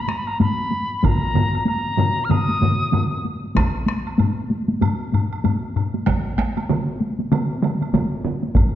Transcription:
0.01 piccolo B5
0.08 piccolo A#5, taiko rim, taiko high
0.18 piccolo B5
0.26 piccolo A#5, taiko high, high woodblock
0.40 piccolo B5, taiko low-mid, taiko high, high woodblock
0.58 taiko high
0.71 taiko high
0.99 piccolo B5, taiko high
1.04 piccolo A#5, taiko, taiko low-mid, taiko mid, high woodblock
1.22 taiko high
1.34 taiko low-mid, taiko mid, taiko high, high woodblock
1.54 taiko high, high woodblock
1.66 piccolo A#5, taiko high, high woodblock
1.85 taiko high
1.98 taiko low-mid, taiko mid, taiko high, high woodblock
2.17 taiko high
2.25 piccolo F6
2.30 piccolo D#6, taiko low-mid, taiko mid, taiko high, high woodblock
2.48 taiko high
2.61 taiko low-mid, taiko mid, taiko high
2.80 taiko high
2.92 taiko low-mid, taiko mid, taiko high, high woodblock
3.12 taiko high
3.25 taiko high
3.43 taiko high
3.55 taiko rim, taiko, taiko high, high woodblock
3.86 taiko rim, taiko high
4.07 high woodblock
4.18 taiko low-mid, taiko high, high woodblock
4.50 taiko high
4.68 taiko high
4.81 taiko low-mid, taiko high, high woodblock
5.12 taiko low-mid, taiko high, high woodblock
5.33 high woodblock
5.44 taiko low-mid, taiko high, high woodblock
5.76 taiko low-mid, high woodblock
5.94 taiko high
6.06 taiko rim, taiko, taiko high, high woodblock
6.38 taiko rim, taiko, taiko high
6.57 taiko high, high woodblock
6.69 taiko mid, taiko high, high woodblock
7.00 taiko high
7.19 taiko high
7.32 taiko mid, taiko high, high woodblock
7.62 taiko mid, taiko high, high woodblock
7.81 taiko high, high woodblock
7.93 taiko, taiko mid, taiko high, high woodblock
8.25 taiko mid
8.43 taiko high
8.55 taiko, taiko low-mid, taiko high, high woodblock

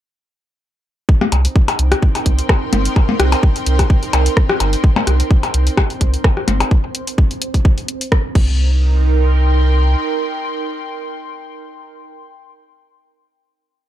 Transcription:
1.09 synth texture C4 C5, analog synth pad D#4, kick
1.21 cross-stick, percussion blips
1.32 sub bass C2, closed hi-hat, percussion blips
1.40 analog synth pad G5
1.45 closed hi-hat
1.56 kick
1.68 closed hi-hat, percussion blips
1.76 sub bass C2, analog synth pad A#4, closed hi-hat
1.84 analog synth pad C6
1.92 cross-stick, closed hi-hat
2.02 kick
2.15 closed hi-hat, percussion blips
2.26 sub bass C2, kick, closed hi-hat
2.39 closed hi-hat
2.49 kick, cross-stick, percussion blips
2.73 sub bass G1, closed hi-hat, percussion blips
2.85 closed hi-hat
2.96 kick, percussion blips
3.09 percussion blips
3.20 sub bass C2, cross-stick, closed hi-hat
3.32 closed hi-hat, percussion blips
3.43 kick
3.56 closed hi-hat
3.66 sub bass C2, closed hi-hat
3.79 kick, cross-stick, closed hi-hat, percussion blips
3.90 kick
4.03 closed hi-hat
4.13 sub bass C2, closed hi-hat, percussion blips
4.26 closed hi-hat
4.37 kick, cross-stick
4.49 cross-stick
4.60 sub bass G1, closed hi-hat, percussion blips
4.73 closed hi-hat
4.84 kick
4.96 percussion blips
5.07 sub bass C2, cross-stick, closed hi-hat
5.20 closed hi-hat
5.31 kick
5.43 closed hi-hat, percussion blips
5.54 sub bass C2, closed hi-hat
5.67 closed hi-hat
5.77 kick, cross-stick, percussion blips
5.90 closed hi-hat
6.01 sub bass C2, kick, closed hi-hat
6.14 closed hi-hat
6.24 kick, cross-stick, percussion blips
6.37 cross-stick
6.48 sub bass G1, closed hi-hat, percussion blips
6.60 closed hi-hat, percussion blips
6.71 kick
6.95 closed hi-hat
7.07 closed hi-hat
7.18 kick
7.31 closed hi-hat
7.42 closed hi-hat
7.54 kick, closed hi-hat
7.65 kick
7.78 closed hi-hat
7.88 closed hi-hat
8.01 closed hi-hat
8.12 kick, cross-stick
8.35 sub bass C2, analog synth pad D#4, kick, crash
8.43 analog synth pad A#4
8.74 analog synth pad G5
8.80 analog synth pad C6

